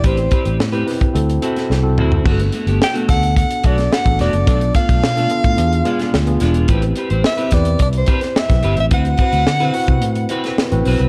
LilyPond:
<<
  \new Staff \with { instrumentName = "Soprano saxophone" } { \time 4/4 \key g \major \tempo 4 = 108 c''4 r2. | r4 g''8 fis''8 fis''8 d''8 fis''8 d''8 | d''8 f''2. r8 | r4 e''8 d''8 d''16 c''8. e''8. e''16 |
fis''2. r4 | }
  \new Staff \with { instrumentName = "Tine electric piano" } { \time 4/4 \key g \major <c' e' g' c''>4 r16 <c' e' g' b'>16 <c' e' g' b'>8 <c' e' fis' a'>8 <c' e' fis' a'>8 r16 <c' e' fis' a'>8 r16 | <b d' fis' aes' a'>4 r16 <b d' fis' a'>16 <b d' fis' a'>8. r16 <b d' fis' a'>8 r16 <b d' fis' a'>8 r16 | <b d' f' a'>4 r16 <b d' f' a'>16 <b d' f' a'>8 <b d' f' gis'>8 <b d' f' gis'>8 r16 <b d' f' gis'>8 r16 | <c' e' g' b'>4 r16 <c' e' g' b'>16 <c' e' g' b'>8. r16 <c' e' g' b'>8 r16 <c' e' g' b'>8 r16 |
<c' e' fis' b'>4 r16 <c' e' fis' b'>16 <c' e' fis' b'>8. r16 <c' e' fis' b'>8 r16 <c' e' fis' b'>8 r16 | }
  \new Staff \with { instrumentName = "Clean electric guitar" } { \time 4/4 \key g \major <c' g' b'>16 r16 <c' g' b'>16 <c' g' b'>16 r16 <c' g' b'>16 r4 <c' e' fis'>16 <c' e' fis'>16 r8 <c' e' fis'>16 <c' e' fis'>16 | <a b fis'>16 r16 <a b fis'>16 <a b g'>16 r16 <a b fis'>16 r4 <a b fis'>16 r8. <a b fis'>16 r16 | <a d' f'>16 r16 <a d' f'>16 <a d' f'>16 r16 <a d' f'>16 r4 <gis d' f'>16 <gis d' f'>16 r8 <gis d' f'>16 <gis d' f'>16 | <c' g' b'>16 r16 <c' g' b'>16 <c' g' c''>16 r16 <c' g' b'>16 r4 <c' g' b'>16 r8. <c' g' b'>16 r16 |
<c' fis' b'>16 r16 <c' fis' b'>16 <c' fis' b'>16 r16 <c' fis' b'>16 r4 <c' fis' b'>16 <c' fis' b'>16 r8 <c' fis' b'>16 <c' fis' b'>16 | }
  \new Staff \with { instrumentName = "Fingered electric bass" } { \clef bass \time 4/4 \key g \major a,,8 r16 a,,16 a,8 r8 d,8 r8 c,8 d,8 | g,,8 r16 g,,16 r8 d,8. r16 b,,8 r16 a,,16 e,,16 fis,,16 | b,,8 r16 b,,16 b,8 r16 a,16 e,8 r8 d,8 e,,8 | a,,8 r16 a,,16 r8 e,8 c,8 r8. b,,16 g,,16 a,,16 |
d,8 r16 d,16 d8 r16 c16 a,8 r8. a,,16 b,,16 c,16 | }
  \new DrumStaff \with { instrumentName = "Drums" } \drummode { \time 4/4 <hh bd>16 hh16 <hh bd>16 hh16 sn16 hh16 <hho sn>16 <hh bd>16 hh16 hh16 hh16 <hh sn>16 sn8 toml16 tomfh16 | <cymc bd>16 hh16 hh16 hh16 sn16 hh16 <hh bd sn>16 hh16 <hh bd>16 hh16 <hh bd>16 <hh sn>16 sn16 <hh bd>16 <hh sn>16 hh16 | <hh bd>16 hh16 <hh bd>16 <hh bd>16 sn16 hh16 hh16 <hh bd>16 hh16 hh16 hh16 <hh sn>16 sn16 hh16 <hh sn>16 hh16 | <hh bd>16 hh16 hh16 hh16 sn16 hh16 <hh bd sn>16 hh16 <hh bd>16 hh16 <hh bd>16 <hh sn>16 sn16 <hh bd sn>16 hh16 hh16 |
<hh bd>16 hh16 <hh bd>16 hh16 sn16 hh16 hho16 <hh bd>16 hh16 hh16 hh16 <hh sn>16 sn16 hh16 hho16 hh16 | }
>>